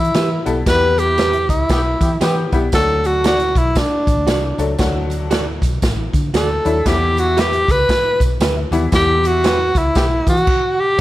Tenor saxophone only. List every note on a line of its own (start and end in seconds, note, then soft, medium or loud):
0.00 0.48 E4 medium
0.68 1.00 B4 loud
0.99 1.49 G4 medium
1.50 2.18 E4 medium
2.74 3.08 A4 loud
3.06 3.26 F#4 medium
3.27 3.60 F#4 medium
3.58 3.79 E4 medium
3.78 4.60 D4 medium
6.36 6.89 A4 medium
6.87 7.21 G4 medium
7.20 7.41 F#4 medium
7.40 7.73 G4 medium
7.71 8.22 B4 loud
8.95 9.28 G4 medium
9.26 9.80 F#4 loud
9.78 10.28 E4 medium
10.29 10.81 F#4 medium
10.80 11.01 G4 medium